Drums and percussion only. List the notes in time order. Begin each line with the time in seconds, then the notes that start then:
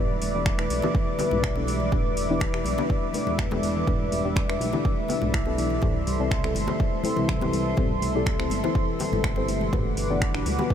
0.22 open hi-hat
0.46 finger snap, kick, muted conga
0.59 finger snap
0.70 open hi-hat, high conga
0.82 muted conga, low conga
0.95 kick
1.19 open hi-hat, muted conga, low conga
1.31 mid tom, high conga
1.44 finger snap, kick
1.56 muted conga
1.67 open hi-hat, high conga
1.80 high conga
1.92 kick, mid tom, muted conga
2.17 open hi-hat
2.40 finger snap, kick, muted conga
2.54 finger snap
2.65 open hi-hat, high conga
2.78 muted conga, low conga
2.90 kick
3.14 open hi-hat, muted conga, high conga
3.27 high conga
3.39 finger snap, kick, mid tom
3.51 muted conga, high conga, low conga
3.63 open hi-hat, high conga
3.87 kick, mid tom, muted conga, high conga
4.12 open hi-hat
4.36 finger snap, kick, muted conga
4.50 finger snap
4.61 open hi-hat, high conga
4.73 muted conga, low conga
4.85 kick
5.08 open hi-hat, muted conga, low conga
5.22 mid tom, high conga
5.34 finger snap, kick
5.46 muted conga
5.57 open hi-hat, high conga
5.70 high conga
5.82 kick, mid tom, muted conga
6.07 open hi-hat
6.31 finger snap, kick, muted conga
6.44 finger snap
6.55 open hi-hat, high conga
6.68 muted conga, low conga
6.80 kick
7.04 open hi-hat, muted conga, high conga
7.16 high conga
7.29 finger snap, kick, mid tom
7.41 muted conga, high conga, low conga
7.53 open hi-hat, high conga
7.77 kick, mid tom, muted conga, high conga
8.02 open hi-hat
8.26 finger snap, kick, muted conga
8.40 finger snap
8.50 open hi-hat, high conga
8.64 muted conga, low conga
8.75 kick
8.99 open hi-hat, muted conga, low conga
9.12 mid tom, high conga
9.24 finger snap, kick
9.36 muted conga
9.48 open hi-hat, high conga
9.61 high conga
9.73 kick, mid tom, muted conga
9.97 open hi-hat
10.22 finger snap, kick, muted conga
10.35 finger snap
10.46 open hi-hat, high conga
10.59 muted conga, low conga
10.70 kick